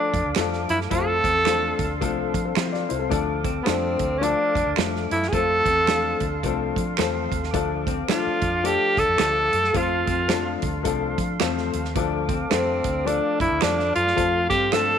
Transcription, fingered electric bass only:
0.13 F2
0.26 D2
0.37 F2
0.70 F#2
0.91 F2
1.24 E2
1.79 D2
2.02 C2
2.34 F3
2.57 F3
2.91 C2
3.12 D2
3.68 F2
4.00 D2
4.56 F2
4.66 D2
4.78 F2
5.11 F#2
5.33 F2
5.66 E2
6.21 D2
6.43 C2
6.77 F3
6.99 E2
7.32 D#2
7.54 D2
8.27 muted fingered electric bass stroke
8.42 F2
8.98 D2
9.08 F2
9.20 D2
9.53 F#2
9.75 F2
10.08 F2
10.63 D2
10.86 C2
11.18 F3
11.41 E2
11.74 D#2
11.95 D2
12.53 F2
12.85 D2
13.40 F2
13.51 D2
13.63 F2
13.96 F#2
14.17 F2
14.51 G2

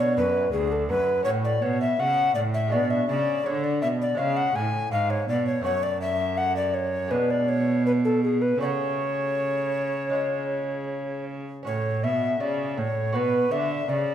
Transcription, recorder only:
0.00 C#5
0.18 B4
0.52 G#4
0.72 A4
0.89 B4
1.25 C#5
1.45 D5
1.62 C#5
1.82 E5
2.00 F#5
2.35 D5
2.54 E5
2.72 D5
2.90 E5
3.09 D5
3.46 C#5
3.64 D5
3.82 E5
4.01 D5
4.18 F5
4.37 F#5
4.56 G#5
4.92 F5
5.10 C#5
5.29 D5
5.47 C#5
5.64 C#5
5.83 D5
6.01 E5
6.38 F#5
6.57 D5
6.74 C#5
7.11 B4
7.30 D5
7.49 C#5
7.86 B4
8.05 A4
8.23 G#4
8.42 B4
8.61 C#5 D5
11.67 C#5
12.04 E5
12.41 D5
12.79 C#5
13.16 B4
13.52 E5
13.89 D5

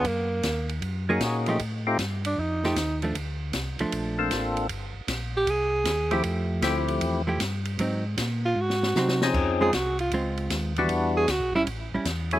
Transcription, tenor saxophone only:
0.07 A#3
2.26 D4
2.40 D#4
5.37 G4
5.50 G#4
8.45 F4
8.61 F#4
9.62 G#4
9.75 F#4
10.01 F4
11.17 G#4
11.31 F#4
11.55 E4

